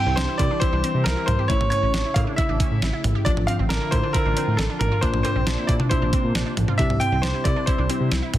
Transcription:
Already playing: analog synth pad E3 C4 G4, fm electric piano G3 C4 E4, grand piano G5
0.06 analog synth bass C2, synth arpeggio sound C4
0.16 analog synth bass C2, synth arpeggio sound D4, grand piano C5, snare, closed hi-hat
0.29 synth arpeggio sound E4
0.38 analog synth bass C3, synth arpeggio sound E4, grand piano D5, kick, closed hi-hat, cowbell
0.51 synth arpeggio sound D4
0.60 synth arpeggio sound E4, grand piano C5, kick, closed hi-hat
0.72 analog synth bass C2, synth arpeggio sound D4
0.84 synth arpeggio sound C4, closed hi-hat
0.95 analog synth bass C3
1.04 analog synth bass C2, synth arpeggio sound E4, grand piano A#4, snare, closed hi-hat
1.17 synth arpeggio sound E4
1.26 analog synth bass C2, grand piano C5, closed hi-hat, mid tom
1.39 synth arpeggio sound G4
1.48 analog synth bass A1, analog synth pad C#3 E4, fm electric piano A3 C#4 E4, synth arpeggio sound E4, grand piano C#5, kick, closed hi-hat
1.61 analog synth bass A1, mid tom
1.70 synth arpeggio sound C#4, grand piano C#5, closed hi-hat
1.83 analog synth bass A1, synth arpeggio sound C#4
1.94 analog synth bass A1, synth arpeggio sound D4, snare, closed hi-hat
2.05 synth arpeggio sound E4
2.14 analog synth bass A2, synth arpeggio sound E4, grand piano F5, kick, closed hi-hat, cowbell
2.27 synth arpeggio sound D4
2.36 synth arpeggio sound E4, grand piano E5, kick, closed hi-hat
2.49 analog synth bass A1, synth arpeggio sound D4
2.60 synth arpeggio sound C#4, kick, closed hi-hat
2.71 analog synth bass A2
2.82 analog synth bass A1, synth arpeggio sound E4, snare, closed hi-hat
2.93 synth arpeggio sound E4
3.04 analog synth bass A1, closed hi-hat, mid tom
3.15 synth arpeggio sound G4
3.25 analog synth bass A1, analog synth pad D3 F4, fm electric piano F3 D4 F4, synth arpeggio sound D4, grand piano D5, kick, closed hi-hat
3.37 analog synth bass A1, mid tom
3.47 synth arpeggio sound C4, grand piano F5, closed hi-hat
3.59 analog synth bass A1, synth arpeggio sound C4
3.69 analog synth bass A1, synth arpeggio sound D4, grand piano A#4, snare, closed hi-hat
3.81 synth arpeggio sound E4
3.91 analog synth bass A2, synth arpeggio sound E4, grand piano C5, kick, closed hi-hat, cowbell
4.03 synth arpeggio sound D4
4.13 synth arpeggio sound E4, grand piano A#4, kick, closed hi-hat
4.25 analog synth bass A1, synth arpeggio sound D4
4.37 synth arpeggio sound C4, closed hi-hat
4.48 analog synth bass A2
4.57 analog synth bass A1, synth arpeggio sound D4, grand piano A4, snare, closed hi-hat
4.70 synth arpeggio sound D4
4.79 analog synth bass A1, grand piano A#4, closed hi-hat, mid tom
4.92 synth arpeggio sound F4
5.01 analog synth bass A#1, analog synth pad C3 A#3 D4, fm electric piano A#3 D4 F4, synth arpeggio sound D4, grand piano C5, kick, closed hi-hat
5.14 analog synth bass A#1, mid tom
5.23 synth arpeggio sound C4, grand piano C5, closed hi-hat, cowbell
5.36 analog synth bass A#1, synth arpeggio sound C4
5.47 analog synth bass A#1, synth arpeggio sound D4, snare, closed hi-hat
5.58 synth arpeggio sound E4
5.67 analog synth bass A#2, synth arpeggio sound E4, grand piano D5, kick, closed hi-hat
5.80 synth arpeggio sound D4, mid tom
5.89 synth arpeggio sound E4, grand piano C5, kick, closed hi-hat
6.02 analog synth bass A#1, synth arpeggio sound D4
6.13 synth arpeggio sound C4, kick, closed hi-hat
6.24 analog synth bass A#2
6.35 analog synth bass A#1, synth arpeggio sound D4, snare, closed hi-hat
6.46 synth arpeggio sound D4
6.57 analog synth bass A#1, closed hi-hat, mid tom
6.68 synth arpeggio sound F4, mid tom
6.78 analog synth bass C2, analog synth pad G3 E4, fm electric piano C4 E4 G4, synth arpeggio sound D4, grand piano E5, kick, closed hi-hat
6.90 analog synth bass C2, mid tom
7.00 synth arpeggio sound C4, grand piano G5, closed hi-hat
7.12 analog synth bass C2, synth arpeggio sound C4
7.22 analog synth bass C2, synth arpeggio sound D4, grand piano C5, snare, closed hi-hat
7.34 synth arpeggio sound E4
7.44 analog synth bass C3, synth arpeggio sound E4, grand piano D5, kick, closed hi-hat, cowbell
7.56 synth arpeggio sound D4
7.66 synth arpeggio sound E4, grand piano C5, kick, closed hi-hat
7.78 analog synth bass C2, synth arpeggio sound D4
7.89 synth arpeggio sound C4, fm electric piano C4 E4 G4, closed hi-hat
8.00 analog synth bass C3
8.11 analog synth bass C2, synth arpeggio sound E4, snare, closed hi-hat
8.22 synth arpeggio sound E4
8.34 analog synth bass C2, closed hi-hat, mid tom

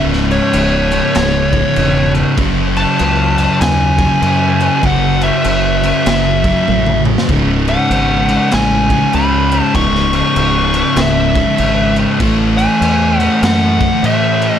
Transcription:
Already playing: fingered electric bass C#1, distorted electric guitar C#2 G#2 C#3
0.13 snare
0.31 lead electric guitar C#5, crash
0.53 fingered electric bass C#1, crash
0.91 distorted electric guitar C#2 G#2 C#3, crash
1.15 fingered electric bass C#1, snare, crash
1.53 distorted electric guitar C#2 G#2 C#3, kick, crash
1.76 fingered electric bass E1, distorted electric guitar C#2 G#2 C#3, crash
2.15 crash
2.37 fingered electric bass F#1, distorted electric guitar F#2 C#3 F#3, kick, crash
2.76 lead electric guitar A5, crash
2.99 fingered electric bass C#2, crash
3.36 distorted electric guitar F#2 C#3 F#3, crash
3.61 fingered electric bass D#2, lead electric guitar G#5, snare, crash
3.97 distorted electric guitar F#2 C#3 F#3, kick, crash
4.21 distorted electric guitar F#2 C#3 F#3, fingered electric bass F#2, crash
4.60 crash
4.82 fingered electric bass F#1, distorted electric guitar F#2 C#3 F#3, kick, crash
4.86 lead electric guitar F#5
5.21 lead electric guitar E5, crash
5.44 fingered electric bass F#1, crash
5.83 distorted electric guitar F#2 C#3 F#3, crash
6.06 fingered electric bass F#1, snare, crash
6.44 distorted electric guitar F#2 C#3 F#3, kick, crash
6.68 fingered electric bass A1, distorted electric guitar F#2 C#3 F#3, high tom
6.86 mid tom
7.05 mid tom
7.18 snare
7.29 fingered electric bass C#1, distorted electric guitar C#2 G#2 C#3, kick, crash
7.68 lead electric guitar F#5, crash
7.90 fingered electric bass G#1, crash
8.28 distorted electric guitar C#2 G#2 C#3, crash
8.51 fingered electric bass A1, lead electric guitar G#5, snare, crash
8.89 distorted electric guitar C#2 G#2 C#3, kick, crash
9.12 distorted electric guitar C#2 G#2 C#3, fingered electric bass C#2, lead electric guitar B5, crash
9.52 crash
9.63 lead electric guitar A5
9.75 fingered electric bass C#1, distorted electric guitar C#2 G#2 C#3, lead electric guitar C#6, kick, crash
9.95 snare
10.13 lead electric guitar C#6, crash
10.36 fingered electric bass C#1, crash
10.74 distorted electric guitar C#2 G#2 C#3, crash
10.96 fingered electric bass C#1, snare, crash
11.01 lead electric guitar E5
11.35 distorted electric guitar C#2 G#2 C#3, kick, crash
11.58 fingered electric bass G#1, distorted electric guitar C#2 G#2 C#3, crash
11.96 crash
12.19 fingered electric bass A1, distorted electric guitar A2 E3 A3, kick, crash
12.58 lead electric guitar G#5, crash
12.81 fingered electric bass E2, crash
13.19 distorted electric guitar A2 E3 A3, lead electric guitar F#5, crash
13.42 fingered electric bass F#2, lead electric guitar F#5, snare, crash
13.80 distorted electric guitar A2 E3 A3, kick, crash
14.02 distorted electric guitar A2 E3 A3, fingered electric bass A2, lead electric guitar E5, crash
14.42 crash
14.51 lead electric guitar D#5

